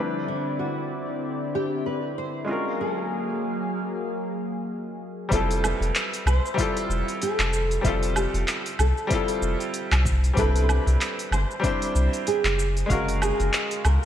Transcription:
Already playing: analog synth pad D3 C4 E4 D5, grand piano G3 C4 D4 E4
0.00 grand piano B4
0.28 nylon-string guitar E4
0.59 nylon-string guitar F#4
1.55 nylon-string guitar G4
1.86 nylon-string guitar B4
2.18 nylon-string guitar C5
2.44 grand piano G#3 C#4 F4, analog synth pad F5
2.49 analog synth pad F#3 A#3 G#4, grand piano F#4 A#4
2.81 nylon-string guitar A#4
5.29 analog synth bass F1, grand piano G3 C4 E4, kick, open hi-hat, shaker
5.33 grand piano F4 A4, nylon-string guitar A4
5.51 open hi-hat, shaker
5.64 nylon-string guitar B4, low woodblock, shaker
5.81 analog synth bass F1, open hi-hat, shaker
5.95 clap, open hi-hat, shaker
6.14 open hi-hat, shaker
6.26 analog synth bass C2, nylon-string guitar C5, low woodblock, shaker
6.46 shaker
6.54 grand piano G3 C4 E4, kick
6.59 grand piano F4 A4, open hi-hat, shaker
6.77 open hi-hat, shaker
6.88 analog synth bass F1, nylon-string guitar B4, shaker
7.08 open hi-hat, shaker
7.22 nylon-string guitar A4, open hi-hat, shaker
7.39 analog synth bass F1, clap, open hi-hat, shaker
7.53 shaker
7.71 open hi-hat, shaker
7.81 analog synth bass F1, grand piano G3 C4 E5, nylon-string guitar F4, kick, open hi-hat, shaker
7.86 grand piano F4 A4
8.03 open hi-hat, shaker
8.16 nylon-string guitar G4, low woodblock, shaker
8.34 analog synth bass F1, open hi-hat, shaker
8.48 clap, open hi-hat, shaker
8.66 open hi-hat, shaker
8.79 analog synth bass C2, nylon-string guitar A4, low woodblock, shaker
8.98 shaker
9.07 grand piano G3 C4 E4, kick, open hi-hat, shaker
9.12 grand piano F4 A4
9.28 open hi-hat, shaker
9.42 analog synth bass F1, shaker
9.60 open hi-hat, shaker
9.74 open hi-hat, shaker
9.92 analog synth bass C2, clap, open hi-hat, low woodblock, shaker
10.05 kick, shaker
10.24 open hi-hat, shaker
10.34 analog synth bass C2, grand piano G3 C4 D4, kick, open hi-hat
10.38 grand piano E4 B4, nylon-string guitar A4, shaker
10.56 open hi-hat, shaker
10.63 nylon-string guitar C5
10.69 nylon-string guitar B4, low woodblock, shaker
10.87 analog synth bass C2, open hi-hat, shaker
11.01 clap, open hi-hat, shaker
11.19 open hi-hat, shaker
11.31 analog synth bass G1, nylon-string guitar C5, low woodblock, shaker
11.51 shaker
11.60 grand piano G3 C4 D4, kick
11.64 grand piano E4 C5, open hi-hat, shaker
11.82 open hi-hat, shaker
11.95 analog synth bass C2, shaker
12.13 open hi-hat, shaker
12.27 nylon-string guitar G#4, open hi-hat, shaker
12.44 analog synth bass F#1, clap, open hi-hat, shaker
12.59 shaker
12.77 open hi-hat, shaker
12.86 analog synth bass F#1, grand piano G#3 C#4 F5, kick
12.90 nylon-string guitar F#4, grand piano F#4 A#4, open hi-hat, shaker
13.08 open hi-hat, shaker
13.22 nylon-string guitar G#4, low woodblock, shaker
13.40 analog synth bass F#1, open hi-hat, shaker
13.53 clap, open hi-hat, shaker
13.71 open hi-hat, shaker
13.85 analog synth bass C#2, nylon-string guitar A#4, low woodblock, shaker

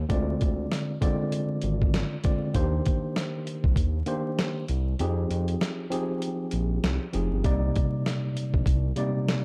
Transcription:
0.09 analog synth bass D2, tine electric piano D3 G#3 C4 F4 D5, kick, closed hi-hat
0.41 analog synth bass D2, kick, closed hi-hat
0.72 snare, closed hi-hat
1.01 tine electric piano D3 G#3 C4 F4 D5, kick, closed hi-hat
1.32 closed hi-hat
1.62 analog synth bass G#1, closed hi-hat
1.82 kick
1.94 snare, closed hi-hat
2.23 tine electric piano D3 G#3 C4 F4 D5, kick, closed hi-hat
2.54 analog synth bass D#2, tine electric piano D#3 A#3 D4 G4 C5, kick, closed hi-hat
2.86 kick, closed hi-hat
3.16 snare, closed hi-hat
3.47 closed hi-hat
3.64 analog synth bass C2, kick
3.76 analog synth bass D#2, kick, closed hi-hat
4.06 tine electric piano D#3 A#3 D4 G4 C5, closed hi-hat
4.39 snare, closed hi-hat
4.68 analog synth bass C2, closed hi-hat
4.99 analog synth bass F2, tine electric piano F3 C4 D#4 G4 G#4, closed hi-hat
5.30 analog synth bass F2, closed hi-hat
5.48 closed hi-hat
5.61 snare, closed hi-hat
5.90 tine electric piano F3 C4 D#4 G4 G#4, closed hi-hat
6.22 closed hi-hat
6.51 analog synth bass A#1, closed hi-hat
6.83 analog synth bass C2, snare, closed hi-hat
7.13 analog synth bass F1, tine electric piano F3 C4 D#4 G4 G#4, closed hi-hat
7.32 analog synth bass G1
7.44 analog synth bass C2, tine electric piano C3 G3 A#3 D#4 D5, kick, closed hi-hat
7.76 kick, closed hi-hat
8.06 snare, closed hi-hat
8.37 closed hi-hat
8.54 analog synth bass A#1, kick
8.66 analog synth bass C2, kick, closed hi-hat
8.96 tine electric piano C3 G3 A#3 D#4 D5, closed hi-hat
9.28 snare, closed hi-hat

